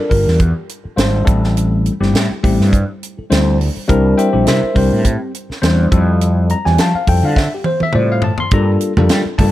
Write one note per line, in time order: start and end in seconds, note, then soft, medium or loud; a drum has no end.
0.00 0.12 D5 medium
0.09 0.24 G1 medium
0.09 0.37 G3 medium
0.09 0.37 A#3 medium
0.09 0.37 D4 medium
0.09 0.37 F4 medium
0.09 0.66 G4 soft
0.09 0.37 A#4 medium
0.09 kick medium
0.09 open hi-hat medium
0.27 0.51 E2 medium
0.27 snare soft
0.39 0.47 F4 soft
0.39 0.48 A4 soft
0.39 kick medium
0.39 closed hi-hat medium
0.69 closed hi-hat medium
0.83 0.91 F4 soft
0.83 0.91 A4 soft
0.83 muted fretless electric bass stroke soft
0.96 1.22 G#1 medium
0.96 1.24 G3 medium
0.96 1.24 A#3 medium
0.96 1.24 D4 medium
0.96 1.24 F4 medium
0.96 1.24 C5 medium
0.96 snare loud
0.96 closed hi-hat medium
1.24 1.88 A1 medium
1.24 1.91 G3 medium
1.24 1.91 A3 medium
1.24 1.91 C4 medium
1.24 1.91 E4 medium
1.24 1.92 A4 medium
1.24 kick loud
1.24 closed hi-hat medium
1.44 snare soft
1.57 closed hi-hat medium
1.86 closed hi-hat medium
2.00 2.12 G1 medium
2.00 2.27 G3 medium
2.00 2.26 A3 medium
2.00 2.27 C4 medium
2.00 2.27 E4 medium
2.00 2.27 G4 medium
2.00 snare soft
2.14 2.27 A2 medium
2.14 snare loud
2.14 closed hi-hat medium
2.30 2.37 E4 soft
2.30 2.38 G4 soft
2.30 muted fretless electric bass stroke soft
2.43 2.57 A1 medium
2.43 2.69 G3 medium
2.43 2.70 A3 medium
2.43 2.70 C4 medium
2.43 2.70 E4 medium
2.43 2.70 G4 medium
2.43 kick medium
2.43 open hi-hat medium
2.59 2.83 G2 medium
2.59 snare soft
2.73 kick medium
2.73 closed hi-hat medium
3.03 closed hi-hat medium
3.17 3.24 E4 soft
3.17 3.24 A4 soft
3.17 muted fretless electric bass stroke soft
3.30 3.68 D2 medium
3.30 3.56 G3 medium
3.30 3.57 A3 medium
3.30 3.57 C4 medium
3.30 3.57 E4 medium
3.30 3.57 C5 medium
3.30 snare loud
3.30 closed hi-hat medium
3.59 3.67 E4 soft
3.59 3.67 G4 soft
3.59 open hi-hat medium
3.77 muted fretless electric bass stroke soft
3.88 4.13 C2 medium
3.88 4.28 G3 loud
3.88 4.28 C4 medium
3.88 4.28 D4 medium
3.88 4.28 E4 medium
3.88 4.28 A#4 loud
3.88 kick loud
3.88 closed hi-hat medium
4.18 4.32 G4 medium
4.18 4.46 C5 medium
4.18 4.46 E5 medium
4.18 4.46 G5 loud
4.18 closed hi-hat medium
4.32 4.45 A#1 medium
4.32 4.59 G3 medium
4.32 4.58 C4 medium
4.32 4.59 D4 medium
4.32 4.47 E4 medium
4.32 4.59 G4 medium
4.44 4.60 C3 medium
4.44 4.48 D#5 medium
4.44 snare loud
4.44 closed hi-hat medium
4.48 4.61 E4 medium
4.48 4.74 A#4 medium
4.48 4.76 C5 medium
4.48 4.76 E5 medium
4.62 4.69 E4 soft
4.62 4.69 A4 soft
4.62 muted fretless electric bass stroke soft
4.74 4.89 C2 medium
4.74 5.01 G3 medium
4.74 4.77 C4 medium
4.74 5.31 C4 medium
4.74 5.02 D4 medium
4.74 5.02 E4 medium
4.74 5.31 G4 medium
4.74 5.01 A#4 medium
4.74 5.04 C5 medium
4.74 kick medium
4.74 open hi-hat medium
4.93 5.16 A2 medium
5.04 5.12 E4 soft
5.04 5.12 C5 soft
5.04 kick medium
5.04 closed hi-hat medium
5.34 closed hi-hat medium
5.49 5.55 E4 soft
5.49 5.56 A#4 soft
5.49 muted fretless electric bass stroke soft
5.49 snare soft
5.62 5.87 E2 medium
5.62 5.88 G3 medium
5.62 5.88 C4 medium
5.62 5.88 D4 medium
5.62 5.88 E4 medium
5.62 5.88 C5 medium
5.62 snare loud
5.62 closed hi-hat medium
5.91 6.53 F2 medium
5.91 6.56 G3 medium
5.91 6.57 C4 medium
5.91 6.57 E4 medium
5.91 6.57 F4 medium
5.91 6.57 A4 medium
5.91 kick loud
5.91 closed hi-hat medium
6.21 closed hi-hat medium
6.50 6.65 A#5 medium
6.50 closed hi-hat medium
6.65 6.77 E2 medium
6.65 6.91 G3 medium
6.65 6.91 C4 medium
6.65 6.91 E4 medium
6.65 6.91 F4 medium
6.65 6.91 G4 medium
6.65 6.78 G#5 medium
6.65 snare soft
6.78 6.92 F3 medium
6.78 6.95 A5 loud
6.78 snare loud
6.78 closed hi-hat medium
6.94 7.01 F4 soft
6.94 7.01 C5 soft
6.94 7.08 F5 medium
6.94 muted fretless electric bass stroke soft
7.07 7.20 F2 medium
7.07 7.34 G3 medium
7.07 7.34 C4 medium
7.07 7.34 E4 medium
7.07 7.34 F4 medium
7.07 7.34 A4 medium
7.07 7.23 G5 loud
7.07 kick medium
7.07 open hi-hat medium
7.23 7.47 D3 medium
7.23 7.37 F5 medium
7.36 7.44 F4 soft
7.36 7.44 C5 soft
7.36 7.52 E5 medium
7.36 kick medium
7.36 snare medium
7.54 7.66 G4 medium
7.64 7.81 C5 medium
7.64 high tom medium
7.80 7.88 F4 soft
7.80 7.88 A4 soft
7.80 7.95 E5 loud
7.80 muted fretless electric bass stroke soft
7.80 high tom medium
7.93 8.31 A2 medium
7.93 8.20 G3 medium
7.93 8.20 C4 medium
7.93 8.20 E4 medium
7.93 8.21 F4 medium
7.93 8.21 C5 medium
7.93 8.10 D5 medium
7.93 mid tom medium
8.12 8.24 F5 medium
8.22 8.31 F4 soft
8.22 8.31 C5 soft
8.22 8.39 A5 medium
8.22 floor tom medium
8.38 8.52 C6 loud
8.38 muted fretless electric bass stroke soft
8.38 floor tom medium
8.51 8.76 G2 medium
8.51 8.92 G3 medium
8.51 8.92 A#3 medium
8.51 8.92 D4 medium
8.51 8.92 F4 medium
8.51 8.92 A4 loud
8.51 8.71 A#5 loud
8.51 kick loud
8.51 closed hi-hat medium
8.81 closed hi-hat medium
8.97 9.08 F2 medium
8.97 9.23 G3 medium
8.97 9.23 A#3 medium
8.97 9.23 D4 medium
8.97 9.23 F4 medium
8.97 9.23 A4 medium
8.97 high conga medium
8.97 low conga medium
9.09 9.23 G3 medium
9.09 snare loud
9.09 closed hi-hat medium
9.25 9.33 F4 soft
9.25 9.33 A4 soft
9.25 muted fretless electric bass stroke soft
9.38 9.52 G2 medium
9.38 9.52 G3 medium
9.38 9.52 A#3 medium
9.38 9.52 D4 medium
9.38 9.52 F4 medium
9.38 9.52 A4 medium
9.38 9.52 A5 loud
9.38 kick medium
9.38 open hi-hat medium
9.38 low conga medium